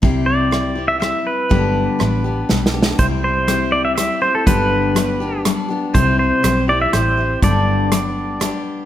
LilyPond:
<<
  \new Staff \with { instrumentName = "Pedal steel guitar" } { \time 3/4 \key c \major \tempo 4 = 122 r8 d''4~ d''16 e''16 e''8 b'8~ | b'2~ b'8 r8 | c''8 c''4 d''16 e''16 e''8 c''16 a'16 | b'2 r4 |
c''8 c''4 d''16 e''16 c''4 | d''2~ d''8 r8 | }
  \new Staff \with { instrumentName = "Steel-string acoustic guitar" } { \time 3/4 \key c \major <c g c' e' g'>4 <g c' e' g'>8 <c' e' g'>8 <g c' e' g'>4 | <g, d g b d' g'>4 <g b d' g'>8 <g b d' g'>8 <g b d' g'>8 <g b d' g'>8 | <c g c' e' g'>4 <g c' e' g'>4 <g c' e' g'>8 <c' e' g'>8 | <g, d g b d' g'>4 <g b d' g'>8 <g b d' g'>8 <g b d' g'>8 <g b d' g'>8 |
<c g c' e' g'>4 <g c' e' g'>8 <c' e' g'>8 <g c' e' g'>8 <c' e' g'>8 | <g, d g b d' g'>4 <g b d' g'>4 <g b d' g'>4 | }
  \new Staff \with { instrumentName = "Fingered electric bass" } { \clef bass \time 3/4 \key c \major c,2. | g,,4 a,,4 b,,4 | c,2. | g,,2. |
c,4 b,,4 a,,4 | g,,2. | }
  \new DrumStaff \with { instrumentName = "Drums" } \drummode { \time 3/4 bd4 ss4 ss4 | bd4 ss4 \tuplet 3/2 { sn8 sn8 sn8 } | <hh bd>4 <hh ss>4 <hh ss>4 | <hh bd>4 <hh ss>4 <hh ss>4 |
<hh bd>4 <hh ss>4 <hh ss>4 | <hh bd>4 <hh ss>4 <hh ss>4 | }
>>